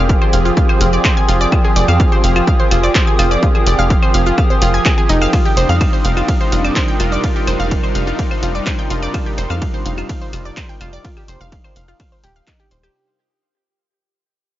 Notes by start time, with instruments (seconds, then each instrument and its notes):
Already playing: analog synth bass F1, analog synth pad F3 C4 G4 G#4, ambient pad F4 A#4 G5 D#6
0.09 synth arpeggio sound F5 F6, kick, shaker
0.22 synth arpeggio sound C5 C6, claves
0.33 analog synth bass F1, synth arpeggio sound F5 F6, open hi-hat, shaker
0.45 synth arpeggio sound F4 F5, shaker
0.57 synth arpeggio sound F5 F6, kick, shaker
0.69 synth arpeggio sound C5 C6, claves
0.81 analog synth bass F1, synth arpeggio sound F4 F5, open hi-hat, shaker
0.93 synth arpeggio sound D5 D6, shaker
1.05 synth arpeggio sound C5 C6, kick, clap, claves, shaker
1.17 synth arpeggio sound G#5 G#6
1.28 analog synth bass F1, synth arpeggio sound F4 F5, open hi-hat, shaker
1.41 synth arpeggio sound D5 D6, shaker
1.52 synth arpeggio sound F4 F5, kick, claves, shaker
1.64 synth arpeggio sound G#4 G#5
1.76 analog synth bass F1, synth arpeggio sound D5 D6, open hi-hat, shaker
1.88 analog synth bass F2, synth arpeggio sound F5 F6, claves, shaker
2.00 synth arpeggio sound F5 F6, kick, shaker
2.12 synth arpeggio sound C5 C6
2.24 analog synth bass F1, synth arpeggio sound F5 F6, open hi-hat, shaker
2.36 synth arpeggio sound F4 F5, claves, shaker
2.47 synth arpeggio sound F5 F6, kick, shaker
2.60 synth arpeggio sound C5 C6
2.71 analog synth bass F1, synth arpeggio sound F4 F5, open hi-hat, claves, shaker
2.83 synth arpeggio sound D5 D6, shaker
2.95 synth arpeggio sound C5 C6, kick, clap, shaker
3.07 synth arpeggio sound G#5 G#6
3.19 analog synth bass F1, synth arpeggio sound F4 F5, open hi-hat, claves, shaker
3.31 synth arpeggio sound D5 D6, shaker
3.43 synth arpeggio sound F4 F5, kick, shaker
3.55 synth arpeggio sound G#4 G#5, claves
3.66 analog synth bass F1, synth arpeggio sound D5 D6, open hi-hat, shaker
3.79 analog synth bass F1, synth arpeggio sound F5 F6, shaker
3.90 synth arpeggio sound F5 F6, kick, shaker
4.03 synth arpeggio sound C5 C6, claves
4.14 analog synth bass F1, synth arpeggio sound F5 F6, open hi-hat, shaker
4.26 synth arpeggio sound F4 F5, shaker
4.38 synth arpeggio sound F5 F6, kick, claves, shaker
4.50 synth arpeggio sound C5 C6
4.62 analog synth bass F1, synth arpeggio sound F4 F5, open hi-hat, shaker
4.74 synth arpeggio sound G#5 G#6, shaker
4.86 synth arpeggio sound G#4 G#5, kick, clap, claves, shaker
4.98 synth arpeggio sound G#4 G#5
5.09 analog synth bass F1, synth arpeggio sound D#4 D#5, open hi-hat, shaker
5.22 synth arpeggio sound F5 F6, claves, shaker
5.33 analog synth pad C3 G3 D4 D#4, synth arpeggio sound F4 F5, ambient pad F4, kick, ride, claves, shaker
5.45 synth arpeggio sound G4 G5
5.56 analog synth bass F1, ambient pad A#4, synth arpeggio sound C5 C6, open hi-hat, shaker
5.69 analog synth bass F2, synth arpeggio sound F5 F6, shaker
5.81 synth arpeggio sound F5 F6, kick, ride, claves, shaker
5.93 synth arpeggio sound C5 C6
6.05 analog synth bass F1, synth arpeggio sound F5 F6, open hi-hat, shaker
6.17 synth arpeggio sound F4 F5, claves, shaker
6.28 synth arpeggio sound F5 F6, kick, ride, shaker
6.41 synth arpeggio sound C5 C6
6.52 analog synth bass F1, synth arpeggio sound F4 F5, open hi-hat, shaker
6.64 synth arpeggio sound D5 D6, claves, shaker
6.76 synth arpeggio sound C5 C6, kick, clap, ride, shaker
6.88 synth arpeggio sound G5 G6
7.00 analog synth bass F1, synth arpeggio sound F4 F5, open hi-hat, claves, shaker
7.12 synth arpeggio sound D5 D6, shaker
7.24 synth arpeggio sound F4 F5, kick, ride, shaker
7.36 synth arpeggio sound G4 G5
7.47 analog synth bass F1, synth arpeggio sound C5 C6, open hi-hat, claves, shaker
7.60 analog synth bass F1, synth arpeggio sound F5 F6, shaker
7.71 synth arpeggio sound F5 F6, kick, ride, shaker
7.83 synth arpeggio sound C5 C6, claves
7.95 analog synth bass F1, synth arpeggio sound F5 F6, open hi-hat, shaker
8.07 synth arpeggio sound F4 F5, shaker
8.19 synth arpeggio sound F5 F6, kick, ride, shaker
8.31 synth arpeggio sound C5 C6, claves
8.43 analog synth bass F1, synth arpeggio sound F4 F5, open hi-hat, shaker
8.55 synth arpeggio sound D5 D6, shaker
8.66 synth arpeggio sound C5 C6, kick, clap, ride, claves, shaker
8.79 synth arpeggio sound G5 G6
8.90 analog synth bass F1, synth arpeggio sound F4 F5, open hi-hat, shaker
9.02 synth arpeggio sound D5 D6, shaker
9.14 synth arpeggio sound F4 F5, kick, ride, claves, shaker
9.26 synth arpeggio sound G4 G5
9.38 analog synth bass F1, synth arpeggio sound C5 C6, open hi-hat, shaker
9.50 analog synth bass F2, synth arpeggio sound F5 F6, claves, shaker
9.62 synth arpeggio sound F5 F6, kick, ride, shaker
9.74 synth arpeggio sound C5 C6
9.86 analog synth bass F1, synth arpeggio sound F5 F6, open hi-hat, shaker
9.98 synth arpeggio sound F4 F5, claves, shaker
10.09 synth arpeggio sound F5 F6, kick, ride, shaker
10.22 synth arpeggio sound C5 C6
10.33 analog synth bass F1, synth arpeggio sound F4 F5, open hi-hat, claves, shaker
10.45 synth arpeggio sound D5 D6, shaker
10.57 synth arpeggio sound C5 C6, kick, clap, ride, shaker
10.69 synth arpeggio sound G5 G6
10.81 analog synth bass F1, synth arpeggio sound F4 F5, open hi-hat, claves, shaker
10.93 synth arpeggio sound D5 D6, shaker
11.05 synth arpeggio sound F4 F5, kick, ride, shaker
11.17 synth arpeggio sound G4 G5, claves
11.28 analog synth bass F1, synth arpeggio sound C5 C6, open hi-hat, shaker
11.41 analog synth bass F1, synth arpeggio sound F5 F6, shaker
11.52 synth arpeggio sound F5 F6, kick, ride, shaker
11.64 synth arpeggio sound C5 C6, claves
11.76 analog synth bass F1, synth arpeggio sound F5 F6, open hi-hat, shaker
11.88 synth arpeggio sound F4 F5, shaker
12.00 synth arpeggio sound F5 F6, kick, ride, claves, shaker
12.12 synth arpeggio sound C5 C6
12.24 analog synth bass D#1, synth arpeggio sound G4 G5, open hi-hat, shaker
12.36 synth arpeggio sound F5 F6, shaker
12.47 synth arpeggio sound D#4 D#5, kick, clap, ride, claves, shaker
12.60 synth arpeggio sound G4 G5
12.71 analog synth bass D#1, synth arpeggio sound C5 C6, open hi-hat, shaker
12.83 synth arpeggio sound G4 G5, claves, shaker